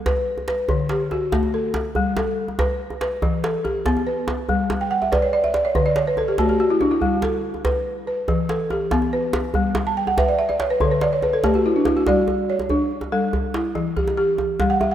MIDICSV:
0, 0, Header, 1, 3, 480
1, 0, Start_track
1, 0, Tempo, 421053
1, 2239, Time_signature, 12, 3, 24, 8
1, 17040, End_track
2, 0, Start_track
2, 0, Title_t, "Balafon"
2, 0, Program_c, 0, 12
2, 0, Note_on_c, 0, 69, 61
2, 68, Note_on_c, 0, 71, 66
2, 314, Note_off_c, 0, 69, 0
2, 535, Note_off_c, 0, 71, 0
2, 549, Note_on_c, 0, 71, 58
2, 794, Note_on_c, 0, 50, 74
2, 1034, Note_off_c, 0, 71, 0
2, 1034, Note_on_c, 0, 67, 66
2, 1273, Note_on_c, 0, 66, 64
2, 1276, Note_off_c, 0, 50, 0
2, 1512, Note_on_c, 0, 57, 74
2, 1755, Note_on_c, 0, 69, 62
2, 1757, Note_off_c, 0, 67, 0
2, 1995, Note_off_c, 0, 57, 0
2, 1996, Note_off_c, 0, 66, 0
2, 2236, Note_on_c, 0, 55, 74
2, 2464, Note_off_c, 0, 69, 0
2, 2478, Note_on_c, 0, 69, 60
2, 2717, Note_off_c, 0, 55, 0
2, 2955, Note_on_c, 0, 71, 67
2, 3198, Note_off_c, 0, 69, 0
2, 3423, Note_off_c, 0, 71, 0
2, 3437, Note_on_c, 0, 71, 59
2, 3676, Note_on_c, 0, 52, 72
2, 3918, Note_off_c, 0, 71, 0
2, 3919, Note_on_c, 0, 69, 63
2, 4155, Note_on_c, 0, 67, 57
2, 4158, Note_off_c, 0, 52, 0
2, 4399, Note_on_c, 0, 59, 77
2, 4635, Note_on_c, 0, 71, 58
2, 4639, Note_off_c, 0, 69, 0
2, 4877, Note_off_c, 0, 67, 0
2, 4879, Note_off_c, 0, 59, 0
2, 5120, Note_on_c, 0, 55, 77
2, 5357, Note_off_c, 0, 71, 0
2, 5483, Note_on_c, 0, 79, 61
2, 5595, Note_on_c, 0, 78, 66
2, 5600, Note_off_c, 0, 55, 0
2, 5705, Note_off_c, 0, 79, 0
2, 5720, Note_on_c, 0, 76, 61
2, 5820, Note_off_c, 0, 78, 0
2, 5834, Note_on_c, 0, 71, 69
2, 5834, Note_on_c, 0, 74, 60
2, 5943, Note_off_c, 0, 76, 0
2, 5955, Note_on_c, 0, 73, 60
2, 6060, Note_off_c, 0, 74, 0
2, 6077, Note_on_c, 0, 74, 69
2, 6181, Note_off_c, 0, 73, 0
2, 6199, Note_on_c, 0, 76, 64
2, 6299, Note_off_c, 0, 74, 0
2, 6313, Note_on_c, 0, 74, 64
2, 6318, Note_off_c, 0, 71, 0
2, 6423, Note_off_c, 0, 76, 0
2, 6438, Note_on_c, 0, 73, 62
2, 6540, Note_off_c, 0, 74, 0
2, 6556, Note_on_c, 0, 50, 76
2, 6559, Note_on_c, 0, 71, 68
2, 6663, Note_off_c, 0, 73, 0
2, 6678, Note_on_c, 0, 74, 64
2, 6783, Note_off_c, 0, 71, 0
2, 6796, Note_on_c, 0, 73, 65
2, 6902, Note_off_c, 0, 74, 0
2, 6925, Note_on_c, 0, 71, 64
2, 7022, Note_off_c, 0, 73, 0
2, 7039, Note_off_c, 0, 50, 0
2, 7044, Note_on_c, 0, 69, 65
2, 7146, Note_off_c, 0, 71, 0
2, 7162, Note_on_c, 0, 67, 68
2, 7266, Note_off_c, 0, 69, 0
2, 7282, Note_on_c, 0, 66, 70
2, 7287, Note_on_c, 0, 57, 79
2, 7385, Note_off_c, 0, 67, 0
2, 7402, Note_on_c, 0, 67, 59
2, 7505, Note_off_c, 0, 66, 0
2, 7523, Note_on_c, 0, 66, 71
2, 7625, Note_off_c, 0, 67, 0
2, 7642, Note_on_c, 0, 64, 66
2, 7746, Note_off_c, 0, 66, 0
2, 7759, Note_on_c, 0, 62, 68
2, 7764, Note_off_c, 0, 57, 0
2, 7865, Note_off_c, 0, 64, 0
2, 7879, Note_on_c, 0, 64, 68
2, 7984, Note_off_c, 0, 62, 0
2, 7998, Note_on_c, 0, 55, 73
2, 8104, Note_off_c, 0, 64, 0
2, 8241, Note_on_c, 0, 69, 62
2, 8481, Note_off_c, 0, 55, 0
2, 8717, Note_on_c, 0, 71, 69
2, 8963, Note_off_c, 0, 69, 0
2, 9189, Note_off_c, 0, 71, 0
2, 9203, Note_on_c, 0, 71, 60
2, 9444, Note_on_c, 0, 52, 78
2, 9684, Note_off_c, 0, 71, 0
2, 9684, Note_on_c, 0, 69, 60
2, 9924, Note_off_c, 0, 52, 0
2, 9927, Note_on_c, 0, 67, 59
2, 10167, Note_on_c, 0, 59, 82
2, 10405, Note_off_c, 0, 69, 0
2, 10408, Note_on_c, 0, 71, 65
2, 10646, Note_off_c, 0, 59, 0
2, 10647, Note_off_c, 0, 67, 0
2, 10886, Note_on_c, 0, 55, 78
2, 11127, Note_off_c, 0, 71, 0
2, 11249, Note_on_c, 0, 81, 65
2, 11366, Note_off_c, 0, 55, 0
2, 11368, Note_on_c, 0, 79, 63
2, 11471, Note_off_c, 0, 81, 0
2, 11484, Note_on_c, 0, 78, 65
2, 11590, Note_off_c, 0, 79, 0
2, 11605, Note_on_c, 0, 71, 69
2, 11606, Note_on_c, 0, 76, 63
2, 11708, Note_off_c, 0, 78, 0
2, 11725, Note_on_c, 0, 74, 65
2, 11827, Note_off_c, 0, 76, 0
2, 11840, Note_on_c, 0, 76, 71
2, 11944, Note_off_c, 0, 74, 0
2, 11958, Note_on_c, 0, 74, 62
2, 12066, Note_off_c, 0, 76, 0
2, 12082, Note_on_c, 0, 73, 59
2, 12086, Note_off_c, 0, 71, 0
2, 12185, Note_off_c, 0, 74, 0
2, 12202, Note_on_c, 0, 71, 68
2, 12307, Note_off_c, 0, 73, 0
2, 12323, Note_on_c, 0, 50, 77
2, 12323, Note_on_c, 0, 69, 64
2, 12427, Note_off_c, 0, 71, 0
2, 12442, Note_on_c, 0, 71, 63
2, 12548, Note_off_c, 0, 69, 0
2, 12557, Note_on_c, 0, 74, 69
2, 12667, Note_off_c, 0, 71, 0
2, 12685, Note_on_c, 0, 73, 62
2, 12784, Note_off_c, 0, 74, 0
2, 12804, Note_off_c, 0, 50, 0
2, 12804, Note_on_c, 0, 71, 66
2, 12909, Note_off_c, 0, 73, 0
2, 12921, Note_on_c, 0, 69, 64
2, 13028, Note_off_c, 0, 71, 0
2, 13040, Note_on_c, 0, 57, 78
2, 13043, Note_on_c, 0, 67, 68
2, 13146, Note_off_c, 0, 69, 0
2, 13166, Note_on_c, 0, 66, 62
2, 13268, Note_off_c, 0, 67, 0
2, 13289, Note_on_c, 0, 64, 66
2, 13390, Note_off_c, 0, 66, 0
2, 13405, Note_on_c, 0, 62, 67
2, 13511, Note_off_c, 0, 64, 0
2, 13523, Note_off_c, 0, 57, 0
2, 13524, Note_on_c, 0, 64, 62
2, 13629, Note_off_c, 0, 62, 0
2, 13642, Note_on_c, 0, 66, 67
2, 13748, Note_off_c, 0, 64, 0
2, 13766, Note_on_c, 0, 55, 77
2, 13767, Note_on_c, 0, 74, 69
2, 13867, Note_off_c, 0, 66, 0
2, 14245, Note_on_c, 0, 73, 60
2, 14246, Note_off_c, 0, 55, 0
2, 14480, Note_on_c, 0, 62, 73
2, 14486, Note_off_c, 0, 74, 0
2, 14959, Note_on_c, 0, 69, 59
2, 14960, Note_on_c, 0, 55, 73
2, 14962, Note_off_c, 0, 62, 0
2, 14965, Note_off_c, 0, 73, 0
2, 15202, Note_off_c, 0, 55, 0
2, 15439, Note_on_c, 0, 64, 61
2, 15441, Note_off_c, 0, 69, 0
2, 15677, Note_on_c, 0, 52, 72
2, 15920, Note_on_c, 0, 67, 67
2, 16145, Note_off_c, 0, 67, 0
2, 16159, Note_off_c, 0, 52, 0
2, 16159, Note_on_c, 0, 67, 76
2, 16161, Note_off_c, 0, 64, 0
2, 16639, Note_on_c, 0, 55, 80
2, 16640, Note_off_c, 0, 67, 0
2, 16757, Note_on_c, 0, 78, 66
2, 16878, Note_on_c, 0, 76, 70
2, 16982, Note_off_c, 0, 78, 0
2, 17002, Note_on_c, 0, 78, 61
2, 17040, Note_off_c, 0, 55, 0
2, 17040, Note_off_c, 0, 76, 0
2, 17040, Note_off_c, 0, 78, 0
2, 17040, End_track
3, 0, Start_track
3, 0, Title_t, "Djembe"
3, 68, Note_on_c, 9, 62, 67
3, 68, Note_on_c, 9, 64, 71
3, 182, Note_off_c, 9, 62, 0
3, 182, Note_off_c, 9, 64, 0
3, 189, Note_on_c, 9, 62, 22
3, 303, Note_off_c, 9, 62, 0
3, 428, Note_on_c, 9, 62, 21
3, 428, Note_on_c, 9, 63, 52
3, 542, Note_off_c, 9, 62, 0
3, 542, Note_off_c, 9, 63, 0
3, 544, Note_on_c, 9, 62, 68
3, 658, Note_off_c, 9, 62, 0
3, 664, Note_on_c, 9, 62, 21
3, 778, Note_off_c, 9, 62, 0
3, 781, Note_on_c, 9, 62, 21
3, 781, Note_on_c, 9, 63, 69
3, 781, Note_on_c, 9, 64, 67
3, 895, Note_off_c, 9, 62, 0
3, 895, Note_off_c, 9, 63, 0
3, 895, Note_off_c, 9, 64, 0
3, 906, Note_on_c, 9, 62, 22
3, 1019, Note_off_c, 9, 62, 0
3, 1019, Note_on_c, 9, 62, 64
3, 1133, Note_off_c, 9, 62, 0
3, 1266, Note_on_c, 9, 63, 63
3, 1380, Note_off_c, 9, 63, 0
3, 1509, Note_on_c, 9, 62, 67
3, 1509, Note_on_c, 9, 64, 67
3, 1623, Note_off_c, 9, 62, 0
3, 1623, Note_off_c, 9, 64, 0
3, 1628, Note_on_c, 9, 63, 49
3, 1742, Note_off_c, 9, 63, 0
3, 1747, Note_on_c, 9, 62, 20
3, 1861, Note_off_c, 9, 62, 0
3, 1983, Note_on_c, 9, 62, 72
3, 1983, Note_on_c, 9, 63, 66
3, 2097, Note_off_c, 9, 62, 0
3, 2097, Note_off_c, 9, 63, 0
3, 2109, Note_on_c, 9, 62, 22
3, 2223, Note_off_c, 9, 62, 0
3, 2224, Note_on_c, 9, 64, 67
3, 2338, Note_off_c, 9, 64, 0
3, 2469, Note_on_c, 9, 62, 72
3, 2469, Note_on_c, 9, 63, 70
3, 2583, Note_off_c, 9, 62, 0
3, 2583, Note_off_c, 9, 63, 0
3, 2594, Note_on_c, 9, 62, 24
3, 2708, Note_off_c, 9, 62, 0
3, 2831, Note_on_c, 9, 63, 50
3, 2945, Note_off_c, 9, 63, 0
3, 2950, Note_on_c, 9, 62, 69
3, 2950, Note_on_c, 9, 64, 75
3, 3064, Note_off_c, 9, 62, 0
3, 3064, Note_off_c, 9, 64, 0
3, 3074, Note_on_c, 9, 62, 21
3, 3188, Note_off_c, 9, 62, 0
3, 3310, Note_on_c, 9, 63, 54
3, 3424, Note_off_c, 9, 63, 0
3, 3432, Note_on_c, 9, 62, 73
3, 3546, Note_off_c, 9, 62, 0
3, 3674, Note_on_c, 9, 63, 69
3, 3674, Note_on_c, 9, 64, 66
3, 3788, Note_off_c, 9, 63, 0
3, 3788, Note_off_c, 9, 64, 0
3, 3919, Note_on_c, 9, 62, 67
3, 4033, Note_off_c, 9, 62, 0
3, 4160, Note_on_c, 9, 63, 62
3, 4274, Note_off_c, 9, 63, 0
3, 4396, Note_on_c, 9, 62, 60
3, 4396, Note_on_c, 9, 64, 64
3, 4510, Note_off_c, 9, 62, 0
3, 4510, Note_off_c, 9, 64, 0
3, 4522, Note_on_c, 9, 63, 54
3, 4636, Note_off_c, 9, 63, 0
3, 4638, Note_on_c, 9, 62, 21
3, 4752, Note_off_c, 9, 62, 0
3, 4875, Note_on_c, 9, 62, 68
3, 4875, Note_on_c, 9, 63, 59
3, 4989, Note_off_c, 9, 62, 0
3, 4989, Note_off_c, 9, 63, 0
3, 5115, Note_on_c, 9, 64, 61
3, 5229, Note_off_c, 9, 64, 0
3, 5357, Note_on_c, 9, 62, 64
3, 5357, Note_on_c, 9, 63, 69
3, 5471, Note_off_c, 9, 62, 0
3, 5471, Note_off_c, 9, 63, 0
3, 5481, Note_on_c, 9, 62, 22
3, 5595, Note_off_c, 9, 62, 0
3, 5722, Note_on_c, 9, 63, 47
3, 5836, Note_off_c, 9, 63, 0
3, 5843, Note_on_c, 9, 62, 66
3, 5843, Note_on_c, 9, 64, 66
3, 5957, Note_off_c, 9, 62, 0
3, 5957, Note_off_c, 9, 64, 0
3, 5963, Note_on_c, 9, 62, 21
3, 6077, Note_off_c, 9, 62, 0
3, 6199, Note_on_c, 9, 63, 51
3, 6313, Note_off_c, 9, 63, 0
3, 6317, Note_on_c, 9, 62, 64
3, 6431, Note_off_c, 9, 62, 0
3, 6556, Note_on_c, 9, 63, 58
3, 6556, Note_on_c, 9, 64, 62
3, 6670, Note_off_c, 9, 63, 0
3, 6670, Note_off_c, 9, 64, 0
3, 6792, Note_on_c, 9, 62, 65
3, 6906, Note_off_c, 9, 62, 0
3, 7034, Note_on_c, 9, 63, 54
3, 7148, Note_off_c, 9, 63, 0
3, 7275, Note_on_c, 9, 62, 57
3, 7275, Note_on_c, 9, 64, 58
3, 7389, Note_off_c, 9, 62, 0
3, 7389, Note_off_c, 9, 64, 0
3, 7395, Note_on_c, 9, 63, 46
3, 7509, Note_off_c, 9, 63, 0
3, 7519, Note_on_c, 9, 62, 17
3, 7633, Note_off_c, 9, 62, 0
3, 7760, Note_on_c, 9, 63, 57
3, 7874, Note_off_c, 9, 63, 0
3, 7995, Note_on_c, 9, 64, 55
3, 8109, Note_off_c, 9, 64, 0
3, 8232, Note_on_c, 9, 62, 63
3, 8232, Note_on_c, 9, 63, 59
3, 8346, Note_off_c, 9, 62, 0
3, 8346, Note_off_c, 9, 63, 0
3, 8595, Note_on_c, 9, 63, 44
3, 8709, Note_off_c, 9, 63, 0
3, 8718, Note_on_c, 9, 62, 64
3, 8718, Note_on_c, 9, 64, 62
3, 8832, Note_off_c, 9, 62, 0
3, 8832, Note_off_c, 9, 64, 0
3, 8839, Note_on_c, 9, 62, 20
3, 8953, Note_off_c, 9, 62, 0
3, 9439, Note_on_c, 9, 63, 65
3, 9439, Note_on_c, 9, 64, 62
3, 9553, Note_off_c, 9, 63, 0
3, 9553, Note_off_c, 9, 64, 0
3, 9681, Note_on_c, 9, 62, 63
3, 9795, Note_off_c, 9, 62, 0
3, 9922, Note_on_c, 9, 63, 61
3, 10036, Note_off_c, 9, 63, 0
3, 10160, Note_on_c, 9, 62, 66
3, 10160, Note_on_c, 9, 64, 67
3, 10274, Note_off_c, 9, 62, 0
3, 10274, Note_off_c, 9, 64, 0
3, 10283, Note_on_c, 9, 63, 52
3, 10397, Note_off_c, 9, 63, 0
3, 10399, Note_on_c, 9, 62, 21
3, 10513, Note_off_c, 9, 62, 0
3, 10640, Note_on_c, 9, 62, 69
3, 10640, Note_on_c, 9, 63, 67
3, 10754, Note_off_c, 9, 62, 0
3, 10754, Note_off_c, 9, 63, 0
3, 10873, Note_on_c, 9, 64, 70
3, 10987, Note_off_c, 9, 64, 0
3, 11113, Note_on_c, 9, 62, 72
3, 11113, Note_on_c, 9, 63, 74
3, 11227, Note_off_c, 9, 62, 0
3, 11227, Note_off_c, 9, 63, 0
3, 11480, Note_on_c, 9, 62, 20
3, 11480, Note_on_c, 9, 63, 51
3, 11594, Note_off_c, 9, 62, 0
3, 11594, Note_off_c, 9, 63, 0
3, 11600, Note_on_c, 9, 62, 71
3, 11600, Note_on_c, 9, 64, 71
3, 11714, Note_off_c, 9, 62, 0
3, 11714, Note_off_c, 9, 64, 0
3, 11964, Note_on_c, 9, 63, 54
3, 12078, Note_off_c, 9, 63, 0
3, 12080, Note_on_c, 9, 62, 70
3, 12194, Note_off_c, 9, 62, 0
3, 12317, Note_on_c, 9, 63, 65
3, 12317, Note_on_c, 9, 64, 64
3, 12431, Note_off_c, 9, 63, 0
3, 12431, Note_off_c, 9, 64, 0
3, 12555, Note_on_c, 9, 62, 66
3, 12669, Note_off_c, 9, 62, 0
3, 12795, Note_on_c, 9, 63, 62
3, 12909, Note_off_c, 9, 63, 0
3, 12919, Note_on_c, 9, 62, 22
3, 13033, Note_off_c, 9, 62, 0
3, 13037, Note_on_c, 9, 62, 60
3, 13037, Note_on_c, 9, 64, 62
3, 13151, Note_off_c, 9, 62, 0
3, 13151, Note_off_c, 9, 64, 0
3, 13154, Note_on_c, 9, 62, 20
3, 13154, Note_on_c, 9, 63, 50
3, 13268, Note_off_c, 9, 62, 0
3, 13268, Note_off_c, 9, 63, 0
3, 13271, Note_on_c, 9, 62, 20
3, 13385, Note_off_c, 9, 62, 0
3, 13512, Note_on_c, 9, 62, 60
3, 13512, Note_on_c, 9, 63, 65
3, 13626, Note_off_c, 9, 62, 0
3, 13626, Note_off_c, 9, 63, 0
3, 13754, Note_on_c, 9, 62, 58
3, 13754, Note_on_c, 9, 64, 57
3, 13868, Note_off_c, 9, 62, 0
3, 13868, Note_off_c, 9, 64, 0
3, 13995, Note_on_c, 9, 62, 20
3, 13995, Note_on_c, 9, 63, 61
3, 14109, Note_off_c, 9, 62, 0
3, 14109, Note_off_c, 9, 63, 0
3, 14114, Note_on_c, 9, 62, 21
3, 14228, Note_off_c, 9, 62, 0
3, 14357, Note_on_c, 9, 62, 45
3, 14357, Note_on_c, 9, 63, 42
3, 14471, Note_off_c, 9, 62, 0
3, 14471, Note_off_c, 9, 63, 0
3, 14472, Note_on_c, 9, 64, 64
3, 14586, Note_off_c, 9, 64, 0
3, 14717, Note_on_c, 9, 62, 20
3, 14831, Note_off_c, 9, 62, 0
3, 14833, Note_on_c, 9, 62, 46
3, 14833, Note_on_c, 9, 63, 46
3, 14947, Note_off_c, 9, 62, 0
3, 14947, Note_off_c, 9, 63, 0
3, 15199, Note_on_c, 9, 63, 61
3, 15199, Note_on_c, 9, 64, 61
3, 15313, Note_off_c, 9, 63, 0
3, 15313, Note_off_c, 9, 64, 0
3, 15439, Note_on_c, 9, 62, 65
3, 15553, Note_off_c, 9, 62, 0
3, 15561, Note_on_c, 9, 62, 20
3, 15675, Note_off_c, 9, 62, 0
3, 15678, Note_on_c, 9, 63, 61
3, 15792, Note_off_c, 9, 63, 0
3, 15923, Note_on_c, 9, 64, 65
3, 16037, Note_off_c, 9, 64, 0
3, 16045, Note_on_c, 9, 62, 48
3, 16045, Note_on_c, 9, 63, 50
3, 16159, Note_off_c, 9, 62, 0
3, 16159, Note_off_c, 9, 63, 0
3, 16165, Note_on_c, 9, 62, 21
3, 16279, Note_off_c, 9, 62, 0
3, 16397, Note_on_c, 9, 63, 64
3, 16511, Note_off_c, 9, 63, 0
3, 16639, Note_on_c, 9, 62, 66
3, 16639, Note_on_c, 9, 64, 63
3, 16753, Note_off_c, 9, 62, 0
3, 16753, Note_off_c, 9, 64, 0
3, 16880, Note_on_c, 9, 62, 21
3, 16880, Note_on_c, 9, 63, 71
3, 16994, Note_off_c, 9, 62, 0
3, 16994, Note_off_c, 9, 63, 0
3, 16998, Note_on_c, 9, 62, 23
3, 17040, Note_off_c, 9, 62, 0
3, 17040, End_track
0, 0, End_of_file